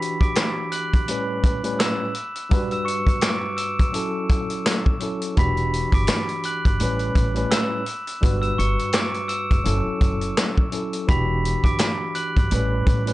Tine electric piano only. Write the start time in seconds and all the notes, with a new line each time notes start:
Already playing: E3 D4 F#4 G4
1.08 A2 G3 C#4 B4
1.63 A2 G3 C#4 B4
2.49 G2 G3 F#4 B4
3.92 F#3 C#4 E4 A4
5.00 F#3 C#4 E4 A4
5.36 E3 D4 F#4 G4
6.80 A2 G3 C#4 B4
7.34 A2 G3 C#4 B4
8.21 G2 G3 F#4 B4
9.64 F#3 C#4 E4 A4
10.71 F#3 C#4 E4 A4
11.07 E3 D4 F#4 G4
12.51 A2 G3 C#4 B4
13.06 A2 G3 C#4 B4